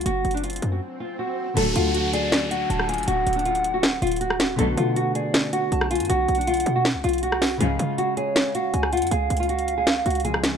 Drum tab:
CC |------------------------------------------------------------------------------------------------|x-----------------------------------------------------------------------------------------------|------------------------------------------------------------------------------------------------|------------------------------------------------------------------------------------------------|
HH |x-----------x---x---x---x---x-x-x---x-----------------------------------------------------------|x-----------x-----------x-----------x-----------x-----------x-----------x-----------x--x--x--x--|x-----------x---x---x---x-----x-----x-----------x-----------x--x--x--x--x-----------x-----------|x-----------x-----------x-----------x-----------x-----------x-----------x-----------x--x--x--x--|
SD |------------------------------------------------------------------------------------------------|------------------------------------------------o-----------------------------r-----------------|------------------------------------------------o-----------------------------r-----o-----------|------------------------------------------------o-----------------------------r-----------------|

CC |------------------------------------------------------------------------------------------------|------------------------------------------------------------------------------------------------|------------------------------------------------------------------------------------------------|
HH |x-----------x---x---x---x---x-x-x---x-----------x-----------x--x--x--x--x-----------o-----------|x-----------x-----------x-----------x-----------x-----------x-----------x-----------x--x--x--x--|x-----------x---x---x---x-----x-----x-----------x-----------x--x--x--x--x-----------x-----------|
SD |------------------------------------------------o-----------------------------r-----o-----------|------------------------------------------------o-----------------------------r-----------------|------------------------------------------------o-----------------------------r-----o-----------|